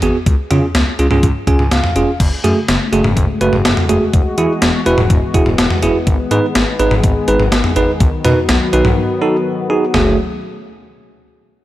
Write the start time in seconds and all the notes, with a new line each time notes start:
0.02 G#1 B3 F#4 G#4, closed hi-hat
0.26 C#2, kick, closed hi-hat
0.51 C#3 C#4 F4 G#4, closed hi-hat, mid tom
0.75 C#2, snare, closed hi-hat
0.99 C#2 C#4 F4 G#4, closed hi-hat
1.11 C#2 C#4 F4 G#4, mid tom
1.23 C#2, kick, closed hi-hat
1.47 C#2 C#4 F4 G#4 G#5, kick, closed hi-hat
1.59 C#2, mid tom
1.71 C#2 F5, snare, closed hi-hat
1.84 mid tom
1.96 F1 C#4 F4 G#4, closed hi-hat
2.20 F#1 C#3 G#3 A3 F#4, kick, closed hi-hat, crash
2.44 F#2 A3 F#4 G#4, closed hi-hat
2.68 F#1, snare, closed hi-hat
2.93 F#1 A3 F#4 G#4, closed hi-hat
3.04 F#1, mid tom
3.17 F#1, kick, closed hi-hat
3.41 F#1 A3 F#4 B4, closed hi-hat
3.53 F#1, mid tom
3.65 F#1, snare, closed hi-hat
3.77 mid tom
3.89 F#1 A3 F#4 G#4, closed hi-hat
4.13 E1 E3 B3, kick, closed hi-hat
4.38 E2 E4 F#4 G#4, closed hi-hat
4.62 E1, snare, closed hi-hat
4.86 E1 E4 F#4 B4, closed hi-hat
4.98 E1, mid tom
5.10 E1, kick, closed hi-hat
5.34 E1 E4 F#4 G#4, kick, closed hi-hat
5.46 E1, mid tom
5.58 E1, snare, closed hi-hat
5.71 mid tom
5.83 F#1 E4 F#4 G#4, closed hi-hat
6.07 G#1 D#3 G#3 G#4, kick, closed hi-hat
6.31 G#2 D#4 G#4 B4, closed hi-hat
6.55 G#1, snare, closed hi-hat
6.79 G#1 D#4 G#4 B4, closed hi-hat
6.91 G#1, mid tom
7.04 G#1, kick, closed hi-hat
7.28 G#1 D#4 G#4 B4, closed hi-hat
7.40 G#1, mid tom
7.52 G#1, snare, closed hi-hat
7.64 mid tom
7.76 G#1 D#4 G#4 B4, closed hi-hat
8.00 B1 F#3 B3 F#4, kick, closed hi-hat
8.25 B2 D#4 F#4 B4, closed hi-hat, mid tom
8.49 B1, snare, closed hi-hat
8.73 B1 D#4 F#4 B4, closed hi-hat
8.85 B1, mid tom
9.22 D#4 F#4 A4
9.70 D#4 F#4 G#4
9.94 F#1 A3 F#4 G#4, snare, floor tom